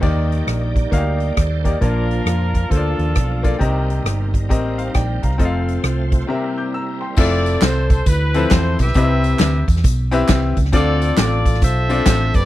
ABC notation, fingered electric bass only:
X:1
M:4/4
L:1/8
Q:"Swing" 1/4=135
K:Eblyd
V:1 name="Fingered electric bass" clef=bass
E,,2 B,,,2 D,,2 E,,2 | B,,,2 F,,2 D,, E,, _C,,2 | C,,2 G,,,2 A,,,2 B,,, C,, | F,,,2 C,,2 z4 |
[K:Flyd] F,,,2 C,,2 D,,2 E,, B,,, | C,,2 D,, E,, B,,,2 C,, _D,, | D,,2 A,,,2 B,,,2 A,,, ^F,,, |]